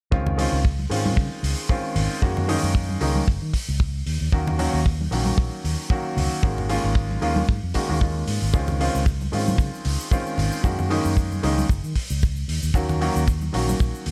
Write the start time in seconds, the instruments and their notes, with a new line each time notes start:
0.11 fingered electric bass C#2, grand piano D#3 G#3 C4 C#4 F4, kick
0.27 low conga
0.37 grand piano D#3 G#3 C4 C#4 F4, open hi-hat
0.52 fingered electric bass C#2
0.65 kick
0.79 high conga
0.89 fingered electric bass G#2, grand piano D#3 G#3 C4 C#4 F4, open hi-hat
1.06 high conga
1.17 fingered electric bass C#3, kick
1.43 fingered electric bass C#2, open hi-hat
1.69 grand piano D#3 G#3 C4 C#4 F4, kick
1.96 fingered electric bass G#1, open hi-hat, low conga
2.22 fingered electric bass F#2, grand piano D#3 G#3 A#3 C#4 F#4, kick
2.37 low conga
2.48 grand piano D#3 G#3 A#3 C#4 D#4, open hi-hat
2.63 fingered electric bass F#2
2.75 kick
2.89 high conga
3.01 fingered electric bass C#2, grand piano D#3 G#3 A#3 C#4 D#4, open hi-hat
3.16 high conga
3.28 fingered electric bass F#1, kick
3.42 fingered electric bass D#3
3.54 kick, open hi-hat
3.68 fingered electric bass C#2
3.80 kick
4.06 fingered electric bass D#2, open hi-hat
4.21 fingered electric bass D#2
4.32 fingered electric bass D#2, grand piano D#3 F#3 A#3 C#4 F#4, kick
4.47 low conga
4.58 grand piano D#3 F#3 A#3 C#4 F#4, open hi-hat
4.74 fingered electric bass D#2
4.86 kick
5.01 high conga
5.11 fingered electric bass A#1, grand piano D#3 F#3 A#3 C#4 F#4, open hi-hat
5.26 high conga
5.38 fingered electric bass A#1, kick
5.64 fingered electric bass D#2, open hi-hat
5.90 grand piano D#3 F#3 A#3 C#4 F#4, kick
6.17 fingered electric bass C#2, open hi-hat, low conga
6.42 fingered electric bass G#1, grand piano D#3 G#3 A#3 C#4 F#4, kick
6.58 low conga
6.69 grand piano D#3 G#3 A#3 C#4 F4, open hi-hat
6.84 fingered electric bass G#1
6.95 kick
7.11 high conga
7.21 fingered electric bass D#2, grand piano D#3 G#3 A#3 C#4 F4, open hi-hat
7.36 high conga
7.49 fingered electric bass G#2, kick
7.63 fingered electric bass F2
7.74 grand piano D#3 G#3 A#3 C#4 F#4, kick, open hi-hat
7.89 fingered electric bass D#2, grand piano D#3 G#3 A#3 C#4 F#4
8.01 grand piano D#3 G#3 A#3, kick
8.27 fingered electric bass G#2, open hi-hat
8.42 fingered electric bass G#1
8.53 fingered electric bass C#2, grand piano D#3 G#3 C4 C#4 F4, kick, shaker
8.68 low conga, shaker
8.80 grand piano D#3 G#3 C4 C#4 F4, open hi-hat
8.95 fingered electric bass C#2, shaker
9.06 kick, shaker
9.21 high conga, shaker
9.32 fingered electric bass G#2, grand piano D#3 G#3 C4 C#4 F4, open hi-hat
9.48 high conga, shaker
9.58 fingered electric bass C#3, kick, shaker
9.74 shaker
9.85 fingered electric bass C#2, open hi-hat
10.00 shaker
10.11 grand piano D#3 G#3 C4 C#4 F4, kick, shaker
10.27 shaker
10.38 fingered electric bass G#1, open hi-hat, low conga
10.52 shaker
10.63 fingered electric bass F#2, grand piano D#3 G#3 A#3 C#4 F#4, kick, shaker
10.79 low conga, shaker
10.90 grand piano D#3 G#3 A#3 C#4 D#4, open hi-hat
11.05 fingered electric bass F#2, shaker
11.17 kick, shaker
11.32 high conga, shaker
11.43 fingered electric bass C#2, grand piano D#3 G#3 A#3 C#4 D#4, open hi-hat
11.58 high conga, shaker
11.69 fingered electric bass F#1, kick, shaker
11.84 fingered electric bass D#3, shaker
11.96 kick, open hi-hat
12.10 fingered electric bass C#2, shaker
12.22 kick, shaker
12.36 shaker
12.48 fingered electric bass D#2, open hi-hat
12.63 fingered electric bass D#2, shaker
12.74 fingered electric bass D#2, grand piano D#3 F#3 A#3 C#4 F#4, kick, shaker
12.89 low conga, shaker
13.01 grand piano D#3 F#3 A#3 C#4 F#4, open hi-hat
13.16 fingered electric bass D#2, shaker
13.28 kick, shaker
13.41 high conga, shaker
13.53 fingered electric bass A#1, grand piano D#3 F#3 A#3 C#4 F#4, open hi-hat
13.69 high conga, shaker
13.80 fingered electric bass A#1, kick, shaker
13.95 shaker
14.06 fingered electric bass D#2, open hi-hat